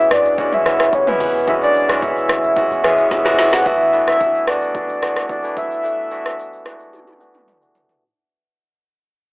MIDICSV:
0, 0, Header, 1, 5, 480
1, 0, Start_track
1, 0, Tempo, 545455
1, 1300, Time_signature, 4, 2, 24, 8
1, 8208, End_track
2, 0, Start_track
2, 0, Title_t, "Soft synth lead"
2, 0, Program_c, 0, 80
2, 110, Note_on_c, 0, 74, 103
2, 329, Note_off_c, 0, 74, 0
2, 351, Note_on_c, 0, 74, 99
2, 475, Note_on_c, 0, 76, 111
2, 488, Note_off_c, 0, 74, 0
2, 831, Note_on_c, 0, 73, 96
2, 845, Note_off_c, 0, 76, 0
2, 955, Note_on_c, 0, 71, 103
2, 968, Note_off_c, 0, 73, 0
2, 1305, Note_off_c, 0, 71, 0
2, 1309, Note_on_c, 0, 76, 100
2, 1363, Note_off_c, 0, 76, 0
2, 1434, Note_on_c, 0, 74, 103
2, 1760, Note_off_c, 0, 74, 0
2, 1789, Note_on_c, 0, 76, 98
2, 2709, Note_off_c, 0, 76, 0
2, 2751, Note_on_c, 0, 76, 108
2, 3117, Note_on_c, 0, 78, 102
2, 3130, Note_off_c, 0, 76, 0
2, 3230, Note_on_c, 0, 76, 107
2, 3243, Note_off_c, 0, 78, 0
2, 3590, Note_off_c, 0, 76, 0
2, 3596, Note_on_c, 0, 76, 111
2, 3921, Note_off_c, 0, 76, 0
2, 3950, Note_on_c, 0, 74, 104
2, 4630, Note_off_c, 0, 74, 0
2, 4670, Note_on_c, 0, 74, 92
2, 4888, Note_off_c, 0, 74, 0
2, 4909, Note_on_c, 0, 76, 105
2, 6549, Note_off_c, 0, 76, 0
2, 8208, End_track
3, 0, Start_track
3, 0, Title_t, "Tine electric piano"
3, 0, Program_c, 1, 4
3, 0, Control_c, 1, 64, 127
3, 0, Note_on_c, 1, 52, 79
3, 0, Note_on_c, 1, 56, 71
3, 0, Note_on_c, 1, 59, 67
3, 0, Note_on_c, 1, 61, 70
3, 0, Note_on_c, 1, 64, 85
3, 0, Note_on_c, 1, 66, 85
3, 222, Note_off_c, 1, 52, 0
3, 224, Note_off_c, 1, 56, 0
3, 225, Note_off_c, 1, 59, 0
3, 227, Note_off_c, 1, 61, 0
3, 229, Note_off_c, 1, 64, 0
3, 335, Note_on_c, 1, 52, 78
3, 338, Note_on_c, 1, 56, 69
3, 341, Note_on_c, 1, 59, 71
3, 345, Note_on_c, 1, 61, 69
3, 347, Note_off_c, 1, 66, 0
3, 347, Note_on_c, 1, 66, 81
3, 531, Note_off_c, 1, 52, 0
3, 533, Note_off_c, 1, 56, 0
3, 534, Note_off_c, 1, 59, 0
3, 536, Note_off_c, 1, 61, 0
3, 537, Note_off_c, 1, 66, 0
3, 575, Note_on_c, 1, 52, 74
3, 577, Note_on_c, 1, 56, 67
3, 581, Note_on_c, 1, 59, 68
3, 583, Note_on_c, 1, 61, 72
3, 587, Note_on_c, 1, 64, 88
3, 867, Note_off_c, 1, 52, 0
3, 868, Note_off_c, 1, 56, 0
3, 870, Note_off_c, 1, 59, 0
3, 872, Note_off_c, 1, 61, 0
3, 873, Note_off_c, 1, 64, 0
3, 939, Note_on_c, 1, 52, 76
3, 943, Note_on_c, 1, 56, 71
3, 946, Note_on_c, 1, 59, 67
3, 949, Note_on_c, 1, 61, 73
3, 952, Note_on_c, 1, 64, 86
3, 1228, Note_off_c, 1, 52, 0
3, 1230, Note_off_c, 1, 56, 0
3, 1231, Note_off_c, 1, 59, 0
3, 1233, Note_off_c, 1, 61, 0
3, 1234, Note_off_c, 1, 64, 0
3, 1295, Note_on_c, 1, 52, 76
3, 1297, Note_on_c, 1, 56, 72
3, 1301, Note_on_c, 1, 59, 67
3, 1304, Note_on_c, 1, 61, 66
3, 1307, Note_on_c, 1, 66, 83
3, 1587, Note_off_c, 1, 52, 0
3, 1588, Note_off_c, 1, 56, 0
3, 1590, Note_off_c, 1, 59, 0
3, 1592, Note_off_c, 1, 61, 0
3, 1593, Note_off_c, 1, 66, 0
3, 1659, Note_on_c, 1, 52, 72
3, 1662, Note_on_c, 1, 56, 71
3, 1666, Note_on_c, 1, 59, 70
3, 1669, Note_on_c, 1, 61, 70
3, 1672, Note_on_c, 1, 66, 79
3, 2142, Note_off_c, 1, 52, 0
3, 2144, Note_off_c, 1, 56, 0
3, 2145, Note_off_c, 1, 59, 0
3, 2146, Note_off_c, 1, 61, 0
3, 2148, Note_off_c, 1, 66, 0
3, 2255, Note_on_c, 1, 52, 76
3, 2259, Note_on_c, 1, 56, 66
3, 2262, Note_on_c, 1, 59, 67
3, 2264, Note_on_c, 1, 61, 68
3, 2268, Note_on_c, 1, 66, 81
3, 2451, Note_off_c, 1, 52, 0
3, 2453, Note_off_c, 1, 56, 0
3, 2455, Note_off_c, 1, 59, 0
3, 2456, Note_off_c, 1, 61, 0
3, 2458, Note_off_c, 1, 66, 0
3, 2495, Note_on_c, 1, 52, 85
3, 2498, Note_on_c, 1, 56, 81
3, 2501, Note_on_c, 1, 59, 82
3, 2504, Note_on_c, 1, 61, 83
3, 2507, Note_on_c, 1, 68, 97
3, 2787, Note_off_c, 1, 52, 0
3, 2789, Note_off_c, 1, 56, 0
3, 2790, Note_off_c, 1, 59, 0
3, 2792, Note_off_c, 1, 61, 0
3, 2793, Note_off_c, 1, 68, 0
3, 2859, Note_on_c, 1, 52, 92
3, 2863, Note_on_c, 1, 56, 82
3, 2866, Note_on_c, 1, 59, 84
3, 2869, Note_on_c, 1, 61, 79
3, 2872, Note_on_c, 1, 66, 100
3, 3148, Note_off_c, 1, 52, 0
3, 3150, Note_off_c, 1, 56, 0
3, 3151, Note_off_c, 1, 59, 0
3, 3153, Note_off_c, 1, 61, 0
3, 3154, Note_off_c, 1, 66, 0
3, 3215, Note_on_c, 1, 52, 71
3, 3218, Note_on_c, 1, 57, 65
3, 3221, Note_on_c, 1, 59, 65
3, 3225, Note_on_c, 1, 62, 70
3, 3227, Note_on_c, 1, 66, 84
3, 3230, Control_c, 1, 64, 0
3, 3365, Control_c, 1, 64, 127
3, 3411, Note_off_c, 1, 52, 0
3, 3413, Note_off_c, 1, 57, 0
3, 3414, Note_off_c, 1, 59, 0
3, 3416, Note_off_c, 1, 62, 0
3, 3417, Note_off_c, 1, 66, 0
3, 3454, Note_on_c, 1, 52, 74
3, 3457, Note_on_c, 1, 57, 68
3, 3461, Note_on_c, 1, 59, 67
3, 3464, Note_on_c, 1, 62, 65
3, 3467, Note_on_c, 1, 64, 83
3, 3845, Note_off_c, 1, 52, 0
3, 3846, Note_off_c, 1, 57, 0
3, 3848, Note_off_c, 1, 59, 0
3, 3850, Note_off_c, 1, 62, 0
3, 3851, Note_off_c, 1, 64, 0
3, 3934, Note_on_c, 1, 52, 73
3, 3937, Note_on_c, 1, 57, 67
3, 3941, Note_on_c, 1, 59, 66
3, 3944, Note_on_c, 1, 62, 69
3, 3947, Note_on_c, 1, 66, 80
3, 4325, Note_off_c, 1, 52, 0
3, 4326, Note_off_c, 1, 57, 0
3, 4328, Note_off_c, 1, 59, 0
3, 4330, Note_off_c, 1, 62, 0
3, 4331, Note_off_c, 1, 66, 0
3, 4415, Note_on_c, 1, 52, 72
3, 4418, Note_on_c, 1, 57, 65
3, 4421, Note_on_c, 1, 59, 71
3, 4424, Note_on_c, 1, 62, 68
3, 4427, Note_on_c, 1, 66, 81
3, 4707, Note_off_c, 1, 52, 0
3, 4709, Note_off_c, 1, 57, 0
3, 4710, Note_off_c, 1, 59, 0
3, 4712, Note_off_c, 1, 62, 0
3, 4713, Note_off_c, 1, 66, 0
3, 4779, Note_on_c, 1, 52, 75
3, 4782, Note_on_c, 1, 57, 66
3, 4785, Note_on_c, 1, 59, 68
3, 4789, Note_on_c, 1, 62, 68
3, 4792, Note_on_c, 1, 64, 82
3, 5068, Note_off_c, 1, 52, 0
3, 5070, Note_off_c, 1, 57, 0
3, 5071, Note_off_c, 1, 59, 0
3, 5073, Note_off_c, 1, 62, 0
3, 5074, Note_off_c, 1, 64, 0
3, 5135, Note_on_c, 1, 52, 74
3, 5138, Note_on_c, 1, 57, 66
3, 5140, Note_on_c, 1, 59, 66
3, 5144, Note_on_c, 1, 62, 67
3, 5147, Note_on_c, 1, 69, 79
3, 5331, Note_off_c, 1, 52, 0
3, 5333, Note_off_c, 1, 57, 0
3, 5334, Note_off_c, 1, 59, 0
3, 5336, Note_off_c, 1, 62, 0
3, 5337, Note_off_c, 1, 69, 0
3, 5375, Note_on_c, 1, 52, 75
3, 5378, Note_on_c, 1, 57, 67
3, 5381, Note_on_c, 1, 59, 64
3, 5384, Note_on_c, 1, 62, 64
3, 5387, Note_on_c, 1, 66, 78
3, 5765, Note_off_c, 1, 52, 0
3, 5767, Note_off_c, 1, 57, 0
3, 5768, Note_off_c, 1, 59, 0
3, 5770, Note_off_c, 1, 62, 0
3, 5771, Note_off_c, 1, 66, 0
3, 5855, Note_on_c, 1, 52, 86
3, 5858, Note_on_c, 1, 56, 64
3, 5861, Note_on_c, 1, 59, 76
3, 5864, Note_on_c, 1, 62, 82
3, 5867, Note_on_c, 1, 66, 93
3, 5915, Note_on_c, 1, 57, 82
3, 5918, Note_off_c, 1, 56, 0
3, 6245, Note_off_c, 1, 52, 0
3, 6248, Note_off_c, 1, 59, 0
3, 6250, Note_off_c, 1, 62, 0
3, 6251, Note_off_c, 1, 66, 0
3, 6275, Note_off_c, 1, 57, 0
3, 6334, Note_on_c, 1, 52, 88
3, 6337, Note_on_c, 1, 57, 79
3, 6340, Note_on_c, 1, 59, 82
3, 6343, Note_on_c, 1, 62, 76
3, 6346, Note_on_c, 1, 66, 96
3, 6627, Note_off_c, 1, 52, 0
3, 6628, Note_off_c, 1, 57, 0
3, 6630, Note_off_c, 1, 59, 0
3, 6631, Note_off_c, 1, 62, 0
3, 6633, Note_off_c, 1, 66, 0
3, 6699, Note_on_c, 1, 52, 82
3, 6703, Note_on_c, 1, 57, 75
3, 6706, Note_on_c, 1, 59, 78
3, 6709, Note_on_c, 1, 62, 81
3, 6712, Note_on_c, 1, 66, 96
3, 6988, Note_off_c, 1, 52, 0
3, 6990, Note_off_c, 1, 57, 0
3, 6991, Note_off_c, 1, 59, 0
3, 6993, Note_off_c, 1, 62, 0
3, 6994, Note_off_c, 1, 66, 0
3, 7071, Control_c, 1, 64, 0
3, 8208, End_track
4, 0, Start_track
4, 0, Title_t, "Log drum bass"
4, 0, Program_c, 2, 39
4, 99, Note_on_c, 2, 40, 95
4, 433, Note_off_c, 2, 40, 0
4, 579, Note_on_c, 2, 38, 92
4, 799, Note_off_c, 2, 38, 0
4, 818, Note_on_c, 2, 37, 93
4, 1038, Note_off_c, 2, 37, 0
4, 1059, Note_on_c, 2, 40, 84
4, 1278, Note_off_c, 2, 40, 0
4, 1300, Note_on_c, 2, 42, 115
4, 1633, Note_off_c, 2, 42, 0
4, 1664, Note_on_c, 2, 42, 98
4, 1989, Note_off_c, 2, 42, 0
4, 2020, Note_on_c, 2, 38, 94
4, 2239, Note_off_c, 2, 38, 0
4, 2386, Note_on_c, 2, 40, 89
4, 2490, Note_off_c, 2, 40, 0
4, 2500, Note_on_c, 2, 40, 96
4, 2614, Note_off_c, 2, 40, 0
4, 2738, Note_on_c, 2, 38, 100
4, 2853, Note_off_c, 2, 38, 0
4, 2865, Note_on_c, 2, 40, 87
4, 2970, Note_off_c, 2, 40, 0
4, 3105, Note_on_c, 2, 37, 95
4, 3210, Note_off_c, 2, 37, 0
4, 8208, End_track
5, 0, Start_track
5, 0, Title_t, "Drums"
5, 97, Note_on_c, 9, 82, 86
5, 98, Note_on_c, 9, 37, 99
5, 185, Note_off_c, 9, 82, 0
5, 186, Note_off_c, 9, 37, 0
5, 219, Note_on_c, 9, 82, 46
5, 307, Note_off_c, 9, 82, 0
5, 337, Note_on_c, 9, 36, 110
5, 340, Note_on_c, 9, 82, 64
5, 425, Note_off_c, 9, 36, 0
5, 428, Note_off_c, 9, 82, 0
5, 462, Note_on_c, 9, 45, 64
5, 463, Note_on_c, 9, 82, 54
5, 550, Note_off_c, 9, 45, 0
5, 551, Note_off_c, 9, 82, 0
5, 579, Note_on_c, 9, 82, 105
5, 581, Note_on_c, 9, 37, 90
5, 667, Note_off_c, 9, 82, 0
5, 669, Note_off_c, 9, 37, 0
5, 698, Note_on_c, 9, 82, 53
5, 703, Note_on_c, 9, 37, 98
5, 786, Note_off_c, 9, 82, 0
5, 791, Note_off_c, 9, 37, 0
5, 818, Note_on_c, 9, 36, 89
5, 819, Note_on_c, 9, 82, 71
5, 906, Note_off_c, 9, 36, 0
5, 907, Note_off_c, 9, 82, 0
5, 943, Note_on_c, 9, 82, 63
5, 945, Note_on_c, 9, 45, 103
5, 1031, Note_off_c, 9, 82, 0
5, 1033, Note_off_c, 9, 45, 0
5, 1059, Note_on_c, 9, 36, 92
5, 1060, Note_on_c, 9, 46, 80
5, 1060, Note_on_c, 9, 82, 97
5, 1147, Note_off_c, 9, 36, 0
5, 1148, Note_off_c, 9, 46, 0
5, 1148, Note_off_c, 9, 82, 0
5, 1184, Note_on_c, 9, 82, 55
5, 1272, Note_off_c, 9, 82, 0
5, 1300, Note_on_c, 9, 36, 116
5, 1300, Note_on_c, 9, 82, 84
5, 1388, Note_off_c, 9, 36, 0
5, 1388, Note_off_c, 9, 82, 0
5, 1426, Note_on_c, 9, 82, 61
5, 1514, Note_off_c, 9, 82, 0
5, 1539, Note_on_c, 9, 82, 83
5, 1627, Note_off_c, 9, 82, 0
5, 1666, Note_on_c, 9, 82, 51
5, 1667, Note_on_c, 9, 37, 84
5, 1754, Note_off_c, 9, 82, 0
5, 1755, Note_off_c, 9, 37, 0
5, 1781, Note_on_c, 9, 36, 99
5, 1784, Note_on_c, 9, 82, 73
5, 1869, Note_off_c, 9, 36, 0
5, 1872, Note_off_c, 9, 82, 0
5, 1908, Note_on_c, 9, 82, 49
5, 1996, Note_off_c, 9, 82, 0
5, 2017, Note_on_c, 9, 82, 83
5, 2018, Note_on_c, 9, 37, 97
5, 2105, Note_off_c, 9, 82, 0
5, 2106, Note_off_c, 9, 37, 0
5, 2140, Note_on_c, 9, 82, 49
5, 2228, Note_off_c, 9, 82, 0
5, 2258, Note_on_c, 9, 36, 111
5, 2261, Note_on_c, 9, 82, 63
5, 2346, Note_off_c, 9, 36, 0
5, 2349, Note_off_c, 9, 82, 0
5, 2384, Note_on_c, 9, 82, 54
5, 2472, Note_off_c, 9, 82, 0
5, 2500, Note_on_c, 9, 82, 102
5, 2502, Note_on_c, 9, 37, 96
5, 2588, Note_off_c, 9, 82, 0
5, 2590, Note_off_c, 9, 37, 0
5, 2618, Note_on_c, 9, 82, 54
5, 2706, Note_off_c, 9, 82, 0
5, 2738, Note_on_c, 9, 36, 86
5, 2739, Note_on_c, 9, 82, 68
5, 2740, Note_on_c, 9, 38, 62
5, 2826, Note_off_c, 9, 36, 0
5, 2827, Note_off_c, 9, 82, 0
5, 2828, Note_off_c, 9, 38, 0
5, 2863, Note_on_c, 9, 82, 60
5, 2864, Note_on_c, 9, 38, 68
5, 2951, Note_off_c, 9, 82, 0
5, 2952, Note_off_c, 9, 38, 0
5, 2980, Note_on_c, 9, 38, 88
5, 2980, Note_on_c, 9, 46, 80
5, 2980, Note_on_c, 9, 82, 103
5, 3068, Note_off_c, 9, 38, 0
5, 3068, Note_off_c, 9, 46, 0
5, 3068, Note_off_c, 9, 82, 0
5, 3105, Note_on_c, 9, 38, 89
5, 3105, Note_on_c, 9, 82, 54
5, 3193, Note_off_c, 9, 38, 0
5, 3193, Note_off_c, 9, 82, 0
5, 3220, Note_on_c, 9, 36, 109
5, 3220, Note_on_c, 9, 82, 79
5, 3308, Note_off_c, 9, 36, 0
5, 3308, Note_off_c, 9, 82, 0
5, 3459, Note_on_c, 9, 82, 81
5, 3547, Note_off_c, 9, 82, 0
5, 3586, Note_on_c, 9, 82, 50
5, 3587, Note_on_c, 9, 37, 83
5, 3674, Note_off_c, 9, 82, 0
5, 3675, Note_off_c, 9, 37, 0
5, 3701, Note_on_c, 9, 36, 95
5, 3704, Note_on_c, 9, 82, 70
5, 3789, Note_off_c, 9, 36, 0
5, 3792, Note_off_c, 9, 82, 0
5, 3828, Note_on_c, 9, 82, 48
5, 3916, Note_off_c, 9, 82, 0
5, 3937, Note_on_c, 9, 37, 96
5, 3937, Note_on_c, 9, 82, 80
5, 4025, Note_off_c, 9, 37, 0
5, 4025, Note_off_c, 9, 82, 0
5, 4059, Note_on_c, 9, 82, 49
5, 4147, Note_off_c, 9, 82, 0
5, 4178, Note_on_c, 9, 36, 108
5, 4181, Note_on_c, 9, 82, 63
5, 4266, Note_off_c, 9, 36, 0
5, 4269, Note_off_c, 9, 82, 0
5, 4304, Note_on_c, 9, 82, 52
5, 4392, Note_off_c, 9, 82, 0
5, 4420, Note_on_c, 9, 82, 98
5, 4423, Note_on_c, 9, 37, 89
5, 4508, Note_off_c, 9, 82, 0
5, 4511, Note_off_c, 9, 37, 0
5, 4539, Note_on_c, 9, 82, 52
5, 4544, Note_on_c, 9, 37, 89
5, 4627, Note_off_c, 9, 82, 0
5, 4632, Note_off_c, 9, 37, 0
5, 4658, Note_on_c, 9, 36, 86
5, 4660, Note_on_c, 9, 82, 66
5, 4746, Note_off_c, 9, 36, 0
5, 4748, Note_off_c, 9, 82, 0
5, 4784, Note_on_c, 9, 82, 59
5, 4871, Note_off_c, 9, 82, 0
5, 4900, Note_on_c, 9, 36, 89
5, 4900, Note_on_c, 9, 82, 97
5, 4988, Note_off_c, 9, 36, 0
5, 4988, Note_off_c, 9, 82, 0
5, 5025, Note_on_c, 9, 82, 52
5, 5113, Note_off_c, 9, 82, 0
5, 5141, Note_on_c, 9, 82, 82
5, 5229, Note_off_c, 9, 82, 0
5, 5379, Note_on_c, 9, 82, 81
5, 5467, Note_off_c, 9, 82, 0
5, 5506, Note_on_c, 9, 82, 50
5, 5507, Note_on_c, 9, 37, 88
5, 5594, Note_off_c, 9, 82, 0
5, 5595, Note_off_c, 9, 37, 0
5, 5624, Note_on_c, 9, 82, 68
5, 5712, Note_off_c, 9, 82, 0
5, 5748, Note_on_c, 9, 82, 46
5, 5836, Note_off_c, 9, 82, 0
5, 5857, Note_on_c, 9, 82, 81
5, 5858, Note_on_c, 9, 37, 96
5, 5945, Note_off_c, 9, 82, 0
5, 5946, Note_off_c, 9, 37, 0
5, 5979, Note_on_c, 9, 82, 46
5, 6067, Note_off_c, 9, 82, 0
5, 6101, Note_on_c, 9, 48, 50
5, 6102, Note_on_c, 9, 82, 62
5, 6189, Note_off_c, 9, 48, 0
5, 6190, Note_off_c, 9, 82, 0
5, 6225, Note_on_c, 9, 82, 52
5, 6226, Note_on_c, 9, 48, 51
5, 6313, Note_off_c, 9, 82, 0
5, 6314, Note_off_c, 9, 48, 0
5, 6340, Note_on_c, 9, 82, 101
5, 6428, Note_off_c, 9, 82, 0
5, 6459, Note_on_c, 9, 82, 51
5, 6465, Note_on_c, 9, 47, 62
5, 6547, Note_off_c, 9, 82, 0
5, 6553, Note_off_c, 9, 47, 0
5, 6581, Note_on_c, 9, 45, 79
5, 6581, Note_on_c, 9, 82, 66
5, 6669, Note_off_c, 9, 45, 0
5, 6669, Note_off_c, 9, 82, 0
5, 6704, Note_on_c, 9, 82, 58
5, 6792, Note_off_c, 9, 82, 0
5, 6820, Note_on_c, 9, 43, 87
5, 6820, Note_on_c, 9, 82, 96
5, 6908, Note_off_c, 9, 43, 0
5, 6908, Note_off_c, 9, 82, 0
5, 6945, Note_on_c, 9, 43, 84
5, 6945, Note_on_c, 9, 82, 49
5, 7033, Note_off_c, 9, 43, 0
5, 7033, Note_off_c, 9, 82, 0
5, 8208, End_track
0, 0, End_of_file